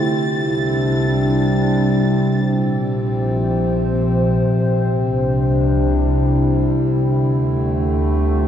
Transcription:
Already playing: C3 A3 E4 F4 A6
0.09 C2 C3
0.22 D4
0.26 G3
2.40 A#1 A#2 C3
2.53 C4
2.73 C5
2.82 F3
4.70 C2 C3
4.90 G3 D4
5.70 E4
6.95 D2 D3
7.12 A3
8.00 F4

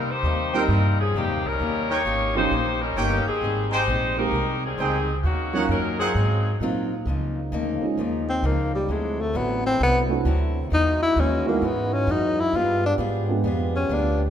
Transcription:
Already playing: C3 G3 A#3 D#4
0.11 A#3 D#4 G4 C5
0.23 D#2 C3 G3 A#3 D#4
0.53 G3 A#3 C4 D#4 G4 A#4 C5 G5
0.68 G2 C3 G3 A#3
0.73 D#4
1.00 F3 A#3 C#4 G#4
1.14 F2 C3 D#3 G3 A#3 C4 D#4 G4
1.30 D#2
1.45 C2 G3 C#4 D#4 A#4
1.59 D#2 D#3 A#3 C#4 G4
1.90 A#3 D#4 G4 A#4 C#5 G5
2.05 G#1 D#3 A#3 C#4 G4
2.35 F3 A#3 C#4 D#4 G4 C5
2.51 A#1 D#3 A#3 C#4 G4
2.81 G3 C#4 D#4 A#4
2.96 G1 D#3 A#3 C#4 D#4 G4 A#4 C#5 G5
3.26 D#3 C4 G4 G#4, muted upright bass stroke
3.41 G#1 G#2 G3 C4 D#4
3.71 G#3 D#4 G4 G#4 C5 G5
3.87 A#1 G#2 G3 C4 D#4
4.17 G#3 A#3 C4 D#4 G4 A#4
4.31 C2 G#2 G3 C4
4.36 D#4
4.65 D#3 G3 C4 G#4
4.78 C#2 G#2 D#3 G3 C4 D#4 G4 G#4 C5 G5
5.21 D#2 D#3 A#3 C#4 F4 F#4
5.26 C#4 F#4
5.53 F#3 A#3 C#4 D#4 F4 A#4 C#5 F#5
5.69 F#2 D#3 F#3 A#3 C#4 D#4 A#4
5.73 F#4
5.99 F#3 C4 D#4 F4 G#4 A#4 C5 F#5
6.15 G#2 F#3 C4
6.19 F4
6.60 G#2 A#2 F#3 A#3 C4 D#4 F4
7.06 C#2 C#3 F3 A#3 D#4
7.10 D#4
7.52 D2 C#3 F3 A#3 D#4
7.81 G#3 A#3 C#4 D#4 F4, muted upright bass stroke
7.97 D#2 C#3 F3 A#3 D#4
8.29 C4
8.42 C#2 C#3 F3 A#3 D#4
8.46 A#3
8.75 G3
8.87 D2 D3 F#3 G#3 C4 E4
8.91 E4
9.21 A3
9.33 A1 D3 F#3 B3 C4 E4
9.66 C4
9.79 C2 D3 F#3 C4 E4
9.83 B3
10.09 A3 C4 D4 E4 F#4
10.25 D2 D3 F#3 C4 E4
10.70 E2 E3 G#3 D#4 E4 F#4
11.03 E4
11.16 D#2 E3 G#3 D#4 F#4
11.20 C#4
11.46 G#3 A#3 B3 D#4 E4 F#4
11.62 G#2 E3 G#3 D#4 F#4
11.66 B3
11.94 C#4
12.07 F#2 E3 G#3 D#4 F#4
12.11 D#4
12.40 E4
12.52 G2 F3 G3 G#3 B3 F4 G4 G#4
12.86 D4
12.98 G#2 G3 B3 F4 G#4
13.29 G#3 B3 D4 F4 G4
13.44 F2 G3 B3 F4 G#4
13.76 C#4
13.89 D2 G3 B3 F4 G#4
13.94 D4

